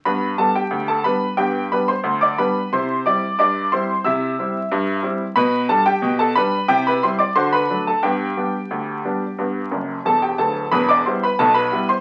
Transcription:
X:1
M:2/4
L:1/16
Q:1/4=90
K:G
V:1 name="Upright piano"
[Bb]2 [Aa] [Gg]2 [Aa] [Bb]2 | [Gg]2 [Bb] [cc']2 [dd'] [Bb]2 | [cc']2 [dd']2 [dd']2 [cc']2 | [ee']6 z2 |
[Bb]2 [Aa] [Gg]2 [Aa] [Bb]2 | [Gg] [Bb] [cc'] [dd'] [cc'] [Bb]2 [Aa] | [Gg]8- | [Gg]4 [Aa] [Gg] [Aa]2 |
[Bb] [dd'] [cc'] [Bb] [Aa] [Bb]2 [cc'] |]
V:2 name="Upright piano" clef=bass
[G,,B,]2 [G,B,D]2 D,,2 [G,B,D]2 | [G,,B,]2 [G,B,D]2 D,,2 [G,B,D]2 | [C,E]2 [G,CE]2 G,,2 [G,CE]2 | [C,E]2 [G,CE]2 G,,2 [G,CE]2 |
B,,2 [G,D]2 B,,2 [G,D]2 | [C,E]2 [G,CE]2 [D,F]2 [F,A,D]2 | [G,,B,]2 [G,B,D]2 D,,2 [G,B,D]2 | [G,,B,]2 [F,,,F,,]2 [E,,,E,,]2 [D,,,D,,]2 |
[E,,,E,,]2 [G,B,E]2 [B,,,B,,]2 [G,B,E]2 |]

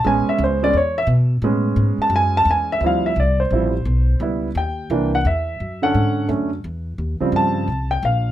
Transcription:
X:1
M:4/4
L:1/8
Q:"Swing" 1/4=173
K:Dlyd
V:1 name="Grand piano"
g e =c d ^c e z2 | z3 a g a g e | [e=f] e d =c4- c | z2 =g3 f e2- |
e f3 z4 | z2 a3 =g ^e2 |]
V:2 name="Grand piano"
[G,B,C]3 [G,B,C] z4 | [G,B,C]8 | [=F,=G,=CE] z3 [F,G,CE] z3 | [=G,B,E] z3 [E,_B,D] z3 |
z [D,CA]3 [D,A,C] z3 | z [C,^E,=G,^B,]3 z4 |]
V:3 name="Upright bass" clef=bass
A,,, z C,,2 E,,2 B,,2 | A,,2 G,, z F,,2 E,,2 | D,,2 =C,,2 A,,,2 B,,,2 | C,,2 ^D,,2 =C,,2 E,,2 |
F,,2 G,,2 F,,2 E,,2 | ^D,, z =G,,2 ^B,,,2 ^A,,,2 |]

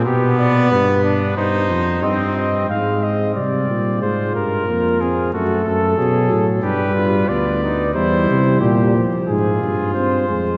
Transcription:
X:1
M:4/4
L:1/8
Q:1/4=91
K:Ab
V:1 name="Trumpet"
G =d =B2 c2 e e | f e =d2 c B2 A | =A4 =B2 =d2 | c2 G z A2 c2 |]
V:2 name="Trumpet"
=B,3 =D E2 C2 | C4 F2 F2 | _G =A _A2 =G F2 E | =E3 z F4 |]
V:3 name="Trombone" clef=bass
z8 | A,2 G,2 A,2 B, C | =A,2 _G,2 =G,2 =B,2 | G,2 G, F,2 z C A, |]
V:4 name="Bass trombone" clef=bass
=B,,2 G,,2 G,, F,, G,,2 | A,,2 C, B,, A,, G,, F,,2 | _G,, G,, =B,, =A,, =G,, G,, =D,,2 | =E,, C, B,, z A,, G,,2 F,, |]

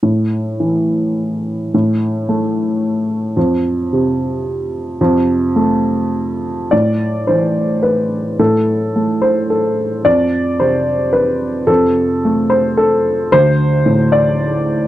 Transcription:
X:1
M:3/4
L:1/8
Q:1/4=109
K:Am
V:1 name="Upright piano"
z6 | z6 | z6 | z6 |
d2 c2 B2 | A3 c A2 | d2 c2 B2 | A3 c A2 |
c3 d3 |]
V:2 name="Upright piano" clef=bass
A,,2 E,4 | A,,2 A,4 | F,,2 C,4 | F,,2 A,4 |
A,,2 E,4 | A,,2 A,4 | F,,2 C,4 | F,,2 A,4 |
D,,2 A,,4 |]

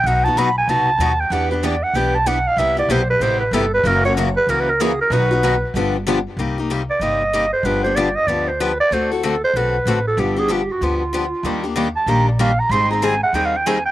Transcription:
X:1
M:4/4
L:1/8
Q:"Swing" 1/4=190
K:Em
V:1 name="Clarinet"
f a b ^g a3 =g | f B d f g a f =f | e d c B c B A B | ^A ^c z B (3A B A ^G A |
B4 z4 | [K:Cm] z3 d e3 c | =B c d e d c B d | c =E =A c =B3 A |
G A G ^F =F4- | F2 z =a b d f b | c' b a ^f (3g =f g a g |]
V:2 name="Steel-string acoustic guitar"
z8 | [E,B,DGB] z [E,B,DGB] z [E,B,DGB] z [E,B,DGB] z | [C,G,B,EG] z [C,G,B,EG] z [C,G,B,EG] z [C,G,B,EG] z | [F,^CE^A] z [F,CEA] z [F,CEA] z [F,CEA] z |
[B,,^D,F,B,^DB] z [B,,D,F,B,DB] z [=D,=F,B,=DG] z [D,F,B,DG] z | [K:Cm] z8 | z8 | z8 |
z8 | [E,G,B,DG] z [E,G,B,DG] z [E,G,B,DG] z [E,G,B,DG] z | [E,G,CEA] z [E,G,CEA] z [E,G,CEA] z [E,G,CEA] z |]
V:3 name="Steel-string acoustic guitar"
[B,,F,B,^DF] [B,DF] [B,,F,B,DF] z [B,,F,B,DF] z [B,,F,B,DF] z | [E,B,DG] [B,DG] [E,B,DG] z [E,B,DG] z [E,B,DG] z | [C,G,B,EG] [B,EG] [C,G,B,EG] z [C,G,B,EG] z [C,G,B,EG] z | [^C,E,^A,^CF] [A,CF] [C,E,A,CF] z [C,E,A,CF] z [C,E,A,CF] z |
[B,,F,B,^DF] [B,DF] [B,,F,B,DF] z [=D,=F,B,=DG] z [D,F,B,DG] z | [K:Cm] [C,G,B,EG] [B,EG] [C,G,B,EG] z [C,G,B,EG] z [C,G,B,EG] z | [D,F,=B,DG] [B,DG] [D,F,B,DG] z [D,F,B,DG] z [D,F,B,DG] z | [D,=A,C^F=A] [CFA] [D,A,CFA] z [D,A,CFA] z [D,A,CFA] z |
[D,F,=B,DG] [B,DG] [D,F,B,DG] z [D,F,B,DG] z [D,F,B,DG] z | [E,G,B,DG] [B,DG] [E,G,B,DG] z [E,G,B,DG] z [E,G,B,DG] z | [E,G,CEA] [CEA] [E,G,CEA] z [E,G,CEA] z [E,G,CEA] z |]
V:4 name="Upright bass" clef=bass
B,,,2 B,,,2 C,,2 ^D,,2 | E,,4 B,,,4 | C,,2 B,,,2 A,,,2 G,,,2 | F,,,4 ^C,,4 |
B,,,4 G,,,4 | [K:Cm] C,,4 G,,,4 | G,,,4 D,,4 | D,,4 =B,,,2 =A,,,2 |
G,,,4 D,,4 | E,,4 B,,,4 | A,,,4 E,,4 |]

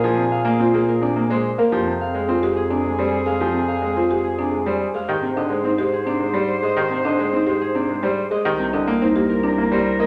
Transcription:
X:1
M:3/4
L:1/16
Q:1/4=107
K:Fdor
V:1 name="Harp"
[Bcdfa]2 f2 c2 B d2 c2 f | g2 f2 c2 A d2 c2 f | g2 f2 c2 A d2 c2 f | g2 e2 c2 A d2 c2 e |
g2 e2 c2 A d2 c2 e | g2 e2 c2 B d2 c2 e |]
V:2 name="Soprano saxophone"
A8- A3 z | A12- | A8- A3 z | c12- |
c8- c3 z | B12 |]
V:3 name="Marimba"
A z3 F A z D z A z B | G z3 F G z D z G z A | G z3 F G z D z G z A | G z D z E G z D z G z A |
G z D z E G z D z G z A | G z D z E G z D z G z B |]
V:4 name="Grand piano" clef=bass
F, C, z B, C B, z C, B, A, z B, | F, C, z A, C A, z C, A, G, z A, | F, C, z A, C A, z C, A, G, z A, | E, C, D, A, C A, z C, A, G, z A, |
E, C, D, A, C A, z C, A, G, z A, | E, C, D, B, C B, z C, B, G, z B, |]
V:5 name="Bass clarinet" clef=bass
B,,12 | F,,12- | F,,12 | A,,12- |
A,,12 | C,,12 |]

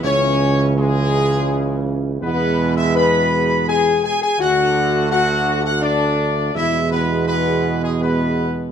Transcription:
X:1
M:3/4
L:1/16
Q:1/4=83
K:E
V:1 name="Trumpet section"
c4 G6 z2 | B3 e b4 g2 g g | f4 f3 f =d4 | e2 B2 B3 G B4 |]
V:2 name="French horn section"
C4 G,6 z2 | B,3 E B4 G2 G G | F4 F3 F =D4 | E2 B,2 B,3 G, B,4 |]
V:3 name="Trombone section" clef=bass
[C,E,]12 | [B,,G,]12 | [=D,A,]12 | [B,,G,]12 |]
V:4 name="Tuba" clef=bass
C,,12 | E,,8- E,,2 z2 | =D,,12 | E,,12 |]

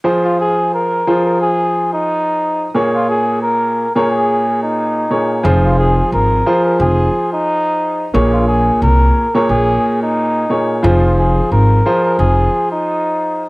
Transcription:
X:1
M:4/4
L:1/16
Q:"Swing 16ths" 1/4=89
K:Fm
V:1 name="Muted trumpet"
z F A2 B3 B A3 E4- E | z F A2 B3 B A3 E4- E | z F A2 B3 B A3 E4- E | z F A2 B3 B A3 E4- E |
z F A2 B3 B A3 E4- E |]
V:2 name="Upright piano"
[F,FAc]6 [F,FAc]8- [F,FAc] z | [B,,B,Ad]6 z [B,,B,Ad]6 z [B,,B,Ad]2 | [F,FAc]6 [F,FAc]8- [F,FAc] z | [B,,B,Ad]6 z [B,,B,Ad]6 z [B,,B,Ad]2 |
[F,FAc]6 [F,FAc]8- [F,FAc] z |]
V:3 name="Upright bass" clef=bass
z16 | z16 | F,,,4 A,,,2 z2 F,,,2 z6 | B,,,4 C,,2 z2 B,,,2 z6 |
F,,,4 A,,,2 z2 F,,,2 z6 |]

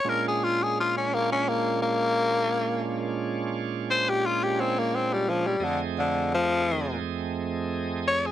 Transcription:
X:1
M:4/4
L:1/16
Q:1/4=86
K:Fdor
V:1 name="Tenor saxophone"
B A F A F ^C B, C B,2 B,6- | B,2 z4 c G F G C B, C G, F, G, | D, z D,2 F,4 z6 _d ^G |]
V:2 name="Tonewheel organ"
[B,,A,^CDF]16- | [B,,A,^CDF]16 | [F,,=A,C^Ge]16 |]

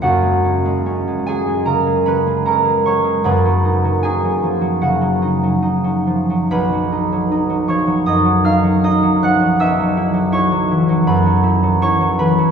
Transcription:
X:1
M:4/4
L:1/16
Q:1/4=76
K:F#
V:1 name="Harp"
[Ff]6 [Gg]2 [Aa]2 [Bb]2 [Aa]2 [cc']2 | [Bb]4 [Gg]4 [Ff]8 | [Bb]6 [cc']2 [dd']2 [ee']2 [dd']2 [ff']2 | [=e=e']4 [cc']4 [Bb]4 [cc']2 [Bb]2 |]
V:2 name="Harp" clef=bass
[F,,,F,,_G,_B,] ^G, C G, C G, F, G, C, G, C G, C G, F, G, | [F,,,F,,] F, D F, D F, E, F, C, F, D F, D F, E, F, | B,,, F, D F, D F, E, F, F,, F, D F, D F, E, F, | B,,, F, =E F, E F, =E, F, F,, F, E F, E F, E, F, |]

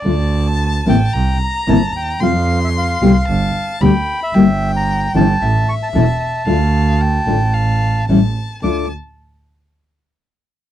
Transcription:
X:1
M:4/4
L:1/16
Q:1/4=112
K:Dm
V:1 name="Bandoneon"
d3 a3 g4 b2 a2 g2 | f3 e f8 g3 e- | e3 b3 a4 ^c' a a4- | a12 z4 |
d'2 z12 z2 |]
V:2 name="Violin"
a8 b8 | c'8 a4 =b4 | g8 e8 | f4 g4 f4 a4 |
a2 z12 z2 |]
V:3 name="Nylon-string guitar"
[D,A,DF]2 z4 [C,E,B,CE]2 z4 [C,E,B,CE]2 z2 | [C,F,A,CF]2 z4 [=B,,D,G,=B,G]2 z4 [B,,D,G,B,G]2 z2 | [G,B,EG]2 z4 [E,A,^CE]2 z4 [E,A,CE]2 z2 | [D,A,DF]2 z4 [D,A,DF]2 z4 [E,G,^CE]2 z2 |
[D,A,DF]2 z12 z2 |]
V:4 name="Double bass" clef=bass
D,,6 A,,,2 C,,2 z2 G,,,2 _E,,2 | F,,6 C,,2 G,,,2 z2 D,,2 z2 | G,,,6 G,,,2 A,,,2 z2 E,,,2 z2 | D,,6 A,,,6 A,,,2 z2 |
D,,2 z12 z2 |]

